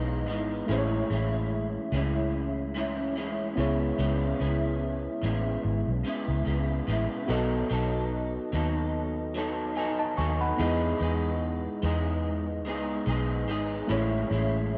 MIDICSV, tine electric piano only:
0, 0, Header, 1, 2, 480
1, 0, Start_track
1, 0, Key_signature, 4, "minor"
1, 0, Tempo, 825309
1, 402, Time_signature, 4, 2, 24, 8
1, 8595, End_track
2, 0, Start_track
2, 0, Title_t, "Tine electric piano"
2, 0, Program_c, 0, 4
2, 0, Control_c, 0, 64, 127
2, 0, Note_on_c, 0, 59, 65
2, 0, Note_on_c, 0, 64, 62
2, 0, Note_on_c, 0, 68, 59
2, 0, Note_on_c, 0, 75, 74
2, 372, Note_off_c, 0, 59, 0
2, 377, Note_off_c, 0, 64, 0
2, 382, Note_off_c, 0, 68, 0
2, 387, Note_off_c, 0, 75, 0
2, 388, Note_on_c, 0, 57, 63
2, 397, Note_on_c, 0, 64, 65
2, 407, Note_on_c, 0, 68, 62
2, 409, Control_c, 0, 64, 0
2, 417, Note_on_c, 0, 72, 60
2, 451, Note_off_c, 0, 72, 0
2, 455, Note_on_c, 0, 73, 77
2, 521, Control_c, 0, 64, 127
2, 2050, Note_off_c, 0, 57, 0
2, 2055, Note_off_c, 0, 64, 0
2, 2060, Note_off_c, 0, 68, 0
2, 2065, Note_on_c, 0, 59, 63
2, 2075, Note_on_c, 0, 64, 60
2, 2084, Note_off_c, 0, 73, 0
2, 2085, Note_on_c, 0, 68, 61
2, 2089, Control_c, 0, 64, 0
2, 2094, Note_on_c, 0, 73, 72
2, 2196, Control_c, 0, 64, 127
2, 3970, Note_off_c, 0, 59, 0
2, 3975, Note_off_c, 0, 64, 0
2, 3980, Note_off_c, 0, 68, 0
2, 3984, Note_off_c, 0, 73, 0
2, 4225, Note_on_c, 0, 59, 65
2, 4233, Note_on_c, 0, 66, 60
2, 4244, Note_on_c, 0, 69, 62
2, 4247, Control_c, 0, 64, 0
2, 4253, Note_on_c, 0, 75, 75
2, 4359, Control_c, 0, 64, 127
2, 5664, Note_off_c, 0, 75, 0
2, 5682, Note_on_c, 0, 80, 56
2, 5684, Note_on_c, 0, 75, 47
2, 5807, Note_off_c, 0, 80, 0
2, 5808, Note_off_c, 0, 75, 0
2, 5812, Note_on_c, 0, 81, 61
2, 5815, Note_on_c, 0, 75, 50
2, 5915, Note_off_c, 0, 81, 0
2, 5917, Note_off_c, 0, 75, 0
2, 5918, Note_on_c, 0, 85, 58
2, 5921, Note_on_c, 0, 80, 53
2, 6045, Note_off_c, 0, 85, 0
2, 6047, Note_off_c, 0, 80, 0
2, 6054, Note_on_c, 0, 83, 57
2, 6056, Note_on_c, 0, 78, 50
2, 6130, Note_off_c, 0, 59, 0
2, 6135, Note_off_c, 0, 66, 0
2, 6140, Note_off_c, 0, 69, 0
2, 6148, Note_on_c, 0, 59, 65
2, 6158, Note_on_c, 0, 64, 60
2, 6167, Note_on_c, 0, 68, 64
2, 6170, Control_c, 0, 64, 0
2, 6177, Note_on_c, 0, 75, 75
2, 6282, Note_off_c, 0, 83, 0
2, 6283, Note_off_c, 0, 78, 0
2, 6284, Control_c, 0, 64, 127
2, 8053, Note_off_c, 0, 59, 0
2, 8058, Note_off_c, 0, 64, 0
2, 8062, Note_off_c, 0, 68, 0
2, 8067, Note_off_c, 0, 75, 0
2, 8069, Note_on_c, 0, 57, 68
2, 8079, Note_on_c, 0, 64, 66
2, 8089, Note_on_c, 0, 68, 61
2, 8091, Control_c, 0, 64, 0
2, 8097, Note_on_c, 0, 73, 72
2, 8197, Control_c, 0, 64, 127
2, 8595, Note_off_c, 0, 57, 0
2, 8595, Note_off_c, 0, 64, 0
2, 8595, Note_off_c, 0, 68, 0
2, 8595, Note_off_c, 0, 73, 0
2, 8595, End_track
0, 0, End_of_file